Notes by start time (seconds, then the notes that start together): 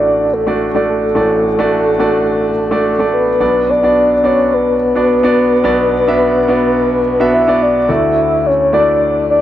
Already playing: A1 A2 A3 D4 E4 F#4 D5
0.33 A4
0.47 A3 D4 F#4 D5
0.75 A3 D4 F#4 D5
0.89 A4
1.15 A1 A2 A3 D4 F#4 D5
1.59 A3 D4 F#4 D5
1.99 A3 D4 F#4 D5
2.71 A3 D4 F#4 D5
2.99 A3 D4 F#4 D5
3.13 B4
3.40 B1 B2 B3 D4 F#4 D5
3.70 D5
3.83 B3 D4 F#4 D5
4.24 B3 D4 F#4 C#5 D5
4.53 B4
4.95 B3 D4 F#4 D5
5.23 B3 D4 F#4 D5
5.64 B1 B2 B3 D4 F#4 D5
6.07 B3 D4 F#4 E5
6.48 B3 D4 F#4 D5
7.20 B3 D4 F#4 E5
7.34 E5
7.48 B3 D4 F#4 D5
7.62 D5
7.88 D2 D3 A3 E4 F#4 D5 E5
8.46 C#5
8.73 A3 E4 F#4 D5
9.30 D5